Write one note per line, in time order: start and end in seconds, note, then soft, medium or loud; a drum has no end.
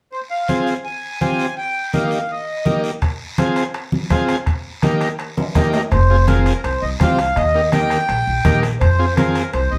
0.12 0.20 C5 medium
0.12 long guiro medium
0.30 0.64 F5 medium
0.48 0.74 C4 medium
0.48 0.74 F4 medium
0.48 0.74 G#4 medium
0.48 high conga medium
0.48 short guiro medium
0.67 short guiro medium
0.85 1.20 G#5 medium
0.85 long guiro medium
1.21 1.46 C4 medium
1.21 1.47 F4 medium
1.21 1.47 G4 medium
1.21 1.55 G#5 medium
1.21 high conga medium
1.21 short guiro medium
1.39 short guiro medium
1.57 1.91 G5 loud
1.57 long guiro medium
1.93 2.19 A#3 medium
1.93 2.19 D#4 medium
1.93 2.19 G4 medium
1.93 2.31 F5 medium
1.93 high conga medium
1.93 short guiro medium
2.11 short guiro medium
2.29 2.81 D#5 medium
2.29 long guiro medium
2.65 2.91 A#3 medium
2.65 2.91 D#4 medium
2.65 2.92 G4 medium
2.65 high conga medium
2.65 short guiro medium
2.84 short guiro medium
3.02 bombo low medium
3.02 bombo rim medium
3.02 high timbale medium
3.02 long guiro medium
3.38 3.64 C4 medium
3.38 3.64 F4 medium
3.38 3.64 G#4 medium
3.38 bombo rim medium
3.38 high conga medium
3.38 high timbale medium
3.38 short guiro medium
3.56 bombo rim medium
3.56 high timbale medium
3.56 short guiro medium
3.74 bombo rim medium
3.74 high timbale medium
3.74 long guiro medium
3.92 high conga medium
4.10 4.36 C4 medium
4.10 4.36 F4 medium
4.10 4.37 G#4 medium
4.10 bombo low medium
4.10 bombo rim medium
4.10 high conga medium
4.10 high timbale medium
4.10 low timbale medium
4.10 short guiro medium
4.28 bombo rim medium
4.28 high timbale medium
4.28 short guiro medium
4.46 bombo low medium
4.46 bombo rim medium
4.46 high timbale medium
4.46 long guiro medium
4.82 5.09 A#3 medium
4.82 5.09 D#4 medium
4.82 5.09 G4 medium
4.82 bombo rim medium
4.82 high conga medium
4.82 high timbale medium
4.82 short guiro medium
5.01 bombo rim medium
5.01 high timbale medium
5.01 short guiro medium
5.19 bombo rim medium
5.19 high timbale medium
5.19 long guiro medium
5.37 high conga medium
5.37 high timbale medium
5.55 5.81 A#3 medium
5.55 5.81 D#4 medium
5.55 5.81 G4 medium
5.55 bombo low medium
5.55 bombo rim medium
5.55 high conga medium
5.55 high timbale medium
5.55 short guiro medium
5.73 bombo rim medium
5.73 low timbale medium
5.73 short guiro medium
5.91 6.50 F1 loud
5.91 6.25 C5 medium
5.91 bombo low medium
5.91 bombo rim medium
5.91 high timbale medium
5.91 long guiro medium
6.10 6.16 C4 medium
6.10 6.17 F4 medium
6.10 6.17 G#4 medium
6.27 6.53 C4 medium
6.27 6.53 F4 medium
6.27 6.53 G#4 medium
6.27 6.62 A#4 medium
6.27 bombo rim medium
6.27 high conga medium
6.27 high timbale medium
6.27 short guiro medium
6.46 bombo rim medium
6.46 high timbale medium
6.46 short guiro medium
6.64 6.79 C2 medium
6.64 6.83 C5 medium
6.64 bombo rim medium
6.64 high timbale medium
6.64 long guiro medium
6.82 6.97 C2 medium
6.82 6.90 D#5 medium
7.00 7.29 C2 medium
7.00 7.19 C4 medium
7.00 7.20 F4 medium
7.00 7.20 G4 medium
7.00 7.38 F5 medium
7.00 bombo low medium
7.00 bombo rim medium
7.00 high conga medium
7.00 high timbale medium
7.00 low timbale medium
7.00 short guiro medium
7.18 bombo rim medium
7.18 high timbale medium
7.18 short guiro medium
7.36 7.95 D#2 medium
7.36 7.70 D#5 medium
7.36 bombo low medium
7.36 bombo rim medium
7.36 high timbale medium
7.36 long guiro medium
7.55 7.61 A#3 medium
7.55 7.61 D#4 soft
7.55 7.62 G4 medium
7.72 7.98 A#3 medium
7.72 7.98 D#4 medium
7.72 7.98 G4 medium
7.72 8.59 G5 loud
7.72 bombo rim medium
7.72 high conga medium
7.72 high timbale medium
7.72 short guiro medium
7.90 bombo rim medium
7.90 high timbale medium
7.90 short guiro medium
8.09 8.23 A#1 medium
8.09 bombo rim medium
8.09 high timbale medium
8.09 long guiro medium
8.27 8.42 A#1 medium
8.45 8.74 A#1 medium
8.45 8.64 A#3 medium
8.45 8.64 D#4 medium
8.45 8.64 G4 medium
8.45 bombo low medium
8.45 bombo rim medium
8.45 high conga medium
8.45 high timbale medium
8.45 short guiro medium
8.63 bombo rim medium
8.63 high timbale medium
8.63 short guiro medium
8.80 9.39 F2 loud
8.80 9.14 C5 medium
8.80 bombo low medium
8.80 bombo rim medium
8.80 high timbale medium
8.80 long guiro medium
8.99 9.06 C4 medium
8.99 9.06 F4 medium
8.99 9.06 G#4 medium
9.16 9.43 C4 medium
9.16 9.43 F4 medium
9.16 9.43 G#4 medium
9.16 9.51 A#4 medium
9.16 bombo rim medium
9.16 high conga medium
9.16 high timbale medium
9.16 short guiro medium
9.35 bombo rim medium
9.35 high timbale medium
9.35 short guiro medium
9.53 9.68 C2 medium
9.53 9.72 C5 medium
9.53 bombo rim medium
9.53 high timbale medium
9.53 long guiro medium
9.71 9.78 C2 medium
9.71 9.78 D#5 medium